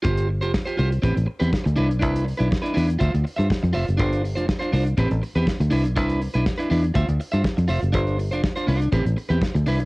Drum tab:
HH |xx-x-x-xxx-x-x-x|xxox-xoxxxox-xox|xxox-xoxxxox-xox|xxox-xoxxxox-xox|
SD |----o-------o---|----o-------o---|----o-------o---|----o-------o---|
BD |o---o---o---o---|o---o---o---o---|o---o---o---o---|o---o---o---o---|

HH |xxox-xoxxxox-xox|
SD |----o-------o---|
BD |o---o---o---o---|